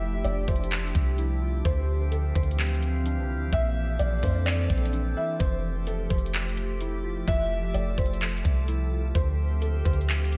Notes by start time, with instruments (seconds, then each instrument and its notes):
Already playing: 808-style bass F1, ambient pad F3 A3 D4 G4, synth texture A3 G4 E5, synth keys E4 F4, felt piano E5
0.01 synth keys F3
0.24 808-style bass F1, synth keys F3, felt piano D5, closed hi-hat
0.47 808-style bass F1, synth keys F3, felt piano C5, kick, closed hi-hat, open hi-hat
0.56 closed hi-hat
0.64 closed hi-hat
0.71 synth keys F3, clap, closed hi-hat
0.79 closed hi-hat
0.87 closed hi-hat
0.95 808-style bass C2, synth keys F3, kick, closed hi-hat
1.18 synth keys E4, closed hi-hat
1.42 synth keys F4
1.65 808-style bass D2, synth keys D3, ambient pad E3 F3 C4, synth texture C4 F5, felt piano C5, kick, closed hi-hat
1.89 synth keys D3
2.12 synth keys D3, felt piano A4, closed hi-hat
2.35 808-style bass D2, synth keys D3, felt piano C5, kick, closed hi-hat
2.43 closed hi-hat
2.51 closed hi-hat
2.58 synth keys D3, clap, closed hi-hat
2.67 closed hi-hat
2.75 closed hi-hat
2.82 synth keys D3, closed hi-hat
3.06 synth keys D4, closed hi-hat
3.17 808-style bass C2
3.29 synth keys E4
3.35 808-style bass D2
3.52 808-style bass A#1, ambient pad E3 C4 D4 A4, synth keys A#3, synth texture C4 A4 D5, felt piano E5, kick, closed hi-hat
3.77 synth keys A#3
3.99 808-style bass A#1, synth keys A#3, felt piano D5, closed hi-hat
4.23 808-style bass F2, synth keys A#3, felt piano C5, kick, open hi-hat
4.46 synth keys A#3, felt piano D5, clap, closed hi-hat
4.70 808-style bass A#1, synth keys A#3, kick, closed hi-hat
4.78 closed hi-hat
4.85 closed hi-hat
4.93 synth keys D4, closed hi-hat
5.17 synth keys E4, felt piano E5
5.40 808-style bass F1, synth keys F3, ambient pad F3 A3 G4, synth texture A3 G4 E5, felt piano C5, kick, closed hi-hat
5.64 synth keys F3
5.87 synth keys F3, felt piano A4, closed hi-hat
6.10 808-style bass F1, synth keys F3, felt piano C5, kick, closed hi-hat
6.18 closed hi-hat
6.26 closed hi-hat
6.34 synth keys F3, clap, closed hi-hat
6.42 closed hi-hat
6.49 closed hi-hat
6.57 synth keys F3, closed hi-hat
6.81 synth keys E4, closed hi-hat
7.04 synth keys F4
7.28 808-style bass F1, synth keys F3, ambient pad A4, felt piano E5, kick, closed hi-hat
7.51 synth keys F3
7.74 808-style bass F1, synth keys F3, felt piano D5, closed hi-hat
7.97 808-style bass F1, synth keys F3, felt piano C5, kick, closed hi-hat, open hi-hat
8.06 closed hi-hat
8.13 closed hi-hat
8.21 synth keys F3, clap, closed hi-hat
8.29 closed hi-hat
8.37 closed hi-hat
8.45 808-style bass C2, synth keys F3, kick, closed hi-hat
8.68 synth keys E4, closed hi-hat
8.92 synth keys F4
9.15 808-style bass D2, synth keys D3, synth texture C4 G4 F5, ambient pad C4 G4, felt piano C5, kick, closed hi-hat
9.39 synth keys D3
9.62 synth keys D3, felt piano A4, closed hi-hat
9.85 808-style bass D2, synth keys D3, felt piano C5, kick, closed hi-hat
9.93 closed hi-hat
10.01 closed hi-hat
10.08 synth keys D3, clap, closed hi-hat
10.17 closed hi-hat
10.25 closed hi-hat
10.32 synth keys D3, closed hi-hat